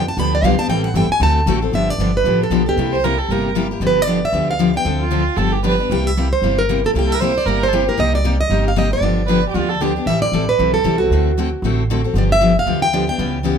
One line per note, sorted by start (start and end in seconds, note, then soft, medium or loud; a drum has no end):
0.00 0.16 F2 medium
0.08 0.18 A5 medium
0.17 0.42 D2 medium
0.17 0.36 D3 medium
0.17 0.36 F3 medium
0.17 0.36 B3 medium
0.17 0.36 D4 medium
0.17 0.36 G4 medium
0.17 0.33 B5 loud
0.35 0.45 D5 medium
0.42 0.57 B1 loud
0.42 0.54 D3 medium
0.42 0.54 F3 medium
0.42 0.54 B3 medium
0.42 0.55 D4 loud
0.42 0.55 G4 loud
0.42 0.59 F5 medium
0.57 0.69 B3 soft
0.57 0.69 D4 medium
0.57 0.69 G4 medium
0.57 0.69 A5 loud
0.57 muted upright bass stroke soft
0.68 0.93 A1 medium
0.68 0.88 E3 medium
0.68 0.88 G3 medium
0.68 0.88 C4 medium
0.68 0.88 E4 medium
0.68 0.88 A4 medium
0.68 0.84 G5 medium
0.84 0.95 F#5 loud
0.94 1.08 G1 loud
0.94 1.06 E3 medium
0.94 1.06 G3 medium
0.94 1.06 C4 loud
0.94 1.06 E4 loud
0.94 1.06 A4 loud
0.94 1.11 G5 medium
1.08 1.22 G#5 medium
1.08 muted upright bass stroke soft
1.20 1.46 D2 medium
1.20 1.39 D3 medium
1.20 1.39 A3 medium
1.20 1.40 C4 medium
1.20 1.40 F#4 medium
1.20 1.40 A4 medium
1.20 1.65 A5 medium
1.46 1.71 A1 medium
1.46 1.57 D3 medium
1.46 1.58 A3 loud
1.46 1.58 C4 loud
1.46 1.58 F#4 loud
1.46 1.58 A4 loud
1.62 1.73 C4 soft
1.62 1.73 F#4 medium
1.62 1.73 A4 medium
1.71 1.93 G1 medium
1.71 1.91 D3 medium
1.71 1.92 F3 medium
1.71 1.92 B3 medium
1.71 1.92 D4 medium
1.71 1.92 G4 medium
1.71 1.90 E5 medium
1.90 2.16 D5 medium
1.98 2.21 G1 medium
1.98 2.10 D3 medium
1.98 2.10 F3 medium
1.98 2.10 B3 medium
1.98 2.10 D4 medium
1.98 2.11 G4 medium
2.17 2.40 B4 medium
2.24 2.47 A1 medium
2.24 2.44 D3 medium
2.24 2.44 F3 medium
2.24 2.44 B3 medium
2.24 2.44 D4 medium
2.24 2.44 G4 medium
2.43 2.66 A4 medium
2.50 2.73 B1 medium
2.50 2.61 D3 medium
2.50 2.62 F3 medium
2.50 2.62 B3 medium
2.50 2.62 D4 medium
2.50 2.62 G4 medium
2.66 2.78 B3 soft
2.66 2.78 D4 soft
2.66 2.77 G4 medium
2.66 3.42 G4 medium
2.76 3.19 C2 medium
2.76 2.96 C3 medium
2.76 2.96 G3 medium
2.76 2.96 A#3 medium
2.76 2.96 E4 medium
2.76 2.97 G4 medium
2.92 3.06 C5 medium
3.04 3.14 C3 medium
3.04 3.14 G3 medium
3.04 3.14 A#3 medium
3.04 3.15 E4 medium
3.04 3.15 G4 medium
3.04 3.20 A#4 medium
3.18 3.33 A4 medium
3.28 3.71 G1 medium
3.28 3.49 C3 medium
3.28 3.49 G3 medium
3.28 3.49 A#3 medium
3.28 3.49 E4 medium
3.28 3.49 G4 medium
3.28 3.51 A#4 medium
3.55 3.66 C3 medium
3.55 3.66 G3 medium
3.55 3.66 A#3 medium
3.55 3.66 E4 medium
3.55 3.66 G4 medium
3.71 3.81 A#3 soft
3.71 3.82 E4 soft
3.71 3.81 G4 medium
3.80 4.23 G1 medium
3.80 4.00 D3 medium
3.80 4.00 F3 medium
3.80 4.00 B3 medium
3.80 4.00 D4 medium
3.80 4.00 G4 medium
3.87 4.02 B4 medium
4.02 4.25 D5 medium
4.07 4.18 D3 medium
4.07 4.18 F3 medium
4.07 4.18 B3 medium
4.07 4.18 D4 medium
4.07 4.18 G4 medium
4.25 4.48 E5 medium
4.32 4.75 D2 medium
4.32 4.51 D3 medium
4.32 4.52 F3 medium
4.32 4.52 B3 medium
4.32 4.52 D4 medium
4.32 4.52 G4 medium
4.51 4.77 F5 medium
4.59 4.70 D3 medium
4.59 4.70 F3 medium
4.59 4.70 B3 medium
4.59 4.70 D4 medium
4.59 4.70 G4 medium
4.74 4.85 B3 soft
4.74 4.85 D4 soft
4.74 4.85 G4 soft
4.74 5.50 G5 medium
4.85 5.27 D2 medium
4.85 5.04 D3 medium
4.85 5.04 F3 medium
4.85 5.04 C4 medium
4.85 5.04 D4 medium
4.85 5.04 A4 medium
5.00 5.39 F4 medium
5.11 5.22 D3 medium
5.11 5.22 F3 medium
5.11 5.22 C4 medium
5.11 5.22 D4 medium
5.11 5.22 A4 medium
5.37 5.79 G1 medium
5.37 5.56 D3 medium
5.37 5.56 F3 medium
5.37 5.56 B3 medium
5.37 5.56 D4 medium
5.37 5.57 G4 medium
5.37 5.54 A4 medium
5.52 5.64 G4 medium
5.64 5.74 D3 medium
5.64 5.74 F3 medium
5.64 5.74 B3 medium
5.64 5.75 D4 medium
5.64 5.75 G4 medium
5.64 5.84 B4 medium
5.78 5.90 B3 soft
5.78 5.90 D4 soft
5.78 5.90 G4 medium
5.90 6.32 C2 medium
5.90 6.09 C3 medium
5.90 6.09 G3 medium
5.90 6.09 A#3 medium
5.90 6.09 E4 medium
5.90 6.09 G4 medium
5.90 6.07 G5 loud
6.07 6.33 E5 medium
6.17 6.27 C3 medium
6.17 6.27 G3 medium
6.17 6.27 A#3 medium
6.17 6.28 E4 medium
6.17 6.28 G4 medium
6.33 6.56 C5 medium
6.42 6.84 G1 medium
6.42 6.61 C3 medium
6.42 6.61 G3 medium
6.42 6.61 A#3 medium
6.42 6.61 E4 medium
6.42 6.62 G4 medium
6.59 6.82 A#4 medium
6.69 6.79 C3 medium
6.69 6.79 G3 medium
6.69 6.79 A#3 medium
6.69 6.80 E4 medium
6.69 6.80 G4 medium
6.84 6.95 A#3 soft
6.84 6.95 E4 soft
6.84 6.95 G4 soft
6.84 6.90 A4 medium
6.94 7.36 C2 medium
6.94 7.13 C3 medium
6.94 7.14 G3 medium
6.94 7.13 A#3 medium
6.94 7.14 E4 medium
6.94 7.14 G4 medium
6.99 7.12 G5 loud
7.07 7.16 A4 medium
7.12 7.21 A#4 medium
7.12 7.37 E5 loud
7.20 7.31 C3 medium
7.20 7.31 G3 medium
7.20 7.31 A#3 medium
7.20 7.32 E4 medium
7.20 7.32 G4 medium
7.20 7.48 C5 medium
7.38 7.63 D5 medium
7.46 7.88 G1 medium
7.46 7.65 C3 medium
7.46 7.65 G3 medium
7.46 7.66 A#3 medium
7.46 7.66 E4 medium
7.46 7.66 G4 medium
7.46 7.69 A#4 medium
7.63 7.88 C5 medium
7.68 7.75 A4 medium
7.73 7.83 C3 medium
7.73 7.83 G3 medium
7.73 7.83 A#3 medium
7.73 7.83 E4 loud
7.73 7.83 G4 loud
7.73 7.94 G4 medium
7.88 7.97 A#3 soft
7.88 7.98 E4 soft
7.88 7.97 G4 soft
7.88 8.00 A#4 medium
7.97 8.40 C2 medium
7.97 8.16 C3 medium
7.97 8.16 G3 medium
7.97 8.17 A#3 medium
7.97 8.17 D#4 medium
7.97 8.17 G4 medium
7.97 8.13 D#5 medium
8.15 8.39 D5 medium
8.24 8.35 C3 medium
8.24 8.35 G3 medium
8.24 8.35 A#3 medium
8.24 8.35 D#4 medium
8.24 8.35 G4 loud
8.41 8.64 D#5 medium
8.50 8.92 G1 medium
8.50 8.69 C3 medium
8.50 8.69 G3 medium
8.50 8.69 A#3 medium
8.50 8.69 D#4 medium
8.50 8.69 G4 medium
8.68 8.77 F5 medium
8.76 8.87 C3 medium
8.76 8.87 G3 medium
8.76 8.87 A#3 medium
8.76 8.87 D#4 medium
8.76 8.87 G4 medium
8.76 8.91 D#5 medium
8.90 9.02 A#3 soft
8.90 9.02 D#4 soft
8.90 9.02 G4 medium
8.90 9.78 D5 medium
9.01 9.43 G1 medium
9.01 9.21 D3 medium
9.01 9.21 F3 medium
9.01 9.21 B3 medium
9.01 9.21 D4 medium
9.01 9.21 G4 medium
9.27 9.39 D3 medium
9.27 9.39 F3 medium
9.27 9.39 B3 medium
9.27 9.39 D4 medium
9.27 9.39 G4 medium
9.27 9.47 B4 medium
9.49 9.56 G4 medium
9.54 9.96 D2 medium
9.54 9.73 D3 medium
9.54 9.73 F3 medium
9.54 9.73 B3 medium
9.54 9.73 D4 medium
9.54 9.71 F4 medium
9.54 9.73 G4 medium
9.69 9.83 A4 medium
9.81 9.91 D3 medium
9.81 9.91 F3 medium
9.81 9.92 B3 medium
9.81 9.92 D4 medium
9.81 10.02 G4 medium
9.81 9.92 G4 medium
9.96 10.08 B3 soft
9.96 10.07 D4 soft
9.96 10.07 G4 soft
10.06 10.27 A1 medium
10.06 10.26 E3 medium
10.06 10.26 G3 medium
10.06 10.26 C4 medium
10.06 10.26 E4 medium
10.06 10.26 A4 medium
10.06 10.22 E5 loud
10.22 10.49 D5 medium
10.32 10.54 A1 medium
10.32 10.43 E3 medium
10.32 10.43 G3 medium
10.32 10.44 C4 medium
10.32 10.44 E4 medium
10.32 10.44 A4 medium
10.49 10.73 B4 medium
10.59 10.81 B1 medium
10.59 10.77 E3 medium
10.59 10.77 G3 medium
10.59 10.78 C4 medium
10.59 10.78 E4 medium
10.59 10.78 A4 medium
10.74 10.98 A4 medium
10.84 11.07 C2 medium
10.84 10.95 E3 medium
10.84 10.95 G3 medium
10.84 10.95 C4 medium
10.84 10.95 E4 medium
10.84 10.95 A4 medium
10.98 11.12 C4 soft
10.98 11.11 E4 soft
10.98 11.73 F#4 medium
10.98 11.11 A4 medium
11.10 11.52 D2 medium
11.10 11.30 D3 medium
11.10 11.30 A3 medium
11.10 11.30 C4 medium
11.10 11.30 F#4 medium
11.10 11.31 A4 medium
11.38 11.48 D3 medium
11.38 11.48 A3 medium
11.38 11.48 C4 medium
11.38 11.48 F#4 medium
11.38 11.49 A4 loud
11.62 12.04 A1 medium
11.62 11.82 D3 medium
11.62 11.82 A3 medium
11.62 11.82 C4 medium
11.62 11.82 F#4 medium
11.62 11.83 A4 medium
11.90 12.00 D3 medium
11.90 12.00 A3 medium
11.90 12.00 C4 medium
11.90 12.01 F#4 medium
11.90 12.00 A4 loud
12.04 12.16 C4 soft
12.04 12.16 F#4 medium
12.04 12.15 A4 medium
12.14 12.56 G1 medium
12.14 12.34 D3 medium
12.14 12.34 F3 medium
12.14 12.34 B3 medium
12.14 12.34 D4 medium
12.14 12.34 G4 medium
12.18 12.23 D5 medium
12.32 12.56 E5 loud
12.41 12.51 D3 medium
12.41 12.51 F3 medium
12.41 12.52 B3 medium
12.41 12.52 D4 medium
12.41 12.52 G4 medium
12.59 12.82 F5 medium
12.66 13.09 D2 medium
12.66 12.85 D3 medium
12.66 12.85 F3 medium
12.66 12.86 B3 medium
12.66 12.86 D4 medium
12.66 12.86 G4 medium
12.82 13.08 G5 loud
12.93 13.04 D3 medium
12.93 13.04 F3 medium
12.93 13.04 B3 medium
12.93 13.04 D4 medium
12.93 13.04 G4 loud
13.07 13.18 B3 soft
13.07 13.19 D4 soft
13.07 13.19 G4 medium
13.07 13.58 G5 medium
13.18 13.58 C#2 medium
13.18 13.38 C#3 medium
13.18 13.38 E3 medium
13.18 13.37 G3 medium
13.18 13.38 B3 medium
13.18 13.38 C#4 medium
13.18 13.38 E4 medium
13.18 13.38 G4 medium
13.18 13.38 B4 medium
13.43 13.55 C#3 medium
13.43 13.55 E3 medium
13.43 13.55 G3 medium
13.43 13.56 B3 medium
13.43 13.56 C#4 medium
13.43 13.55 E4 medium
13.43 13.56 G4 medium
13.43 13.55 B4 medium